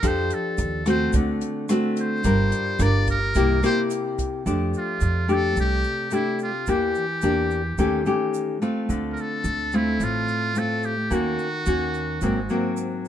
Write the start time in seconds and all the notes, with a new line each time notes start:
0.03 F2 F3 D4 G4 A4, kick, cross-stick, closed hi-hat, shaker
0.07 C5
0.30 A4, closed hi-hat, shaker
0.58 D#2, closed hi-hat, shaker
0.86 A3 C4 F#4 C5, cross-stick, closed hi-hat, shaker
1.13 D2 D3, kick, closed hi-hat, shaker
1.41 closed hi-hat, shaker
1.69 A3 C4 F#4, cross-stick, closed hi-hat, shaker
1.97 closed hi-hat, shaker
2.01 C5
2.24 G1 G3 D4 F4 A#4, kick, closed hi-hat, shaker
2.52 closed hi-hat, shaker
2.79 G1 D4 F4 A#4 D5, cross-stick, closed hi-hat, shaker
3.07 A#4, kick, closed hi-hat, shaker
3.35 C2 C3 A#3 E4 G4, kick, closed hi-hat, shaker
3.63 A#3 E4 G4 C5, cross-stick, closed hi-hat, shaker
3.90 closed hi-hat, shaker
4.18 kick, closed hi-hat, shaker
4.46 F2 F3 A3 D4 G4, shaker
4.74 shaker
4.78 F4
5.01 F2, shaker
5.28 A3 D4 G4, shaker
5.33 A4
5.56 C2 C3, shaker
5.60 G4
5.84 shaker
6.11 A3 D4 E4 G4, shaker
6.39 F4, shaker
6.67 E2 E3 A#3 D4 G4, shaker
6.95 shaker
7.22 E2 A#3 D4 G4, shaker
7.51 shaker
7.78 D#2 D#3 A3 C#4 G4, shaker
8.06 A3 C#4 G4, shaker
8.34 shaker
8.62 A3 C4 F4, shaker
8.89 D2 D3, shaker
9.13 A#4
9.17 shaker
9.21 A4
9.44 D2, shaker
9.72 A3 C4 F4, shaker
9.76 E4
10.00 A1 A2, shaker
10.04 F4
10.28 shaker
10.55 A3 C4 F4 A4, shaker
10.83 G4, shaker
11.10 D#2 D#3 A#3 C#4 F#4, shaker
11.39 shaker
11.66 D#2 A#3 C#4 F#4, shaker
11.94 shaker
12.21 G#1 G#2 F#3 A#3 C4, shaker
12.49 F#3 A#3 C4, shaker
12.77 shaker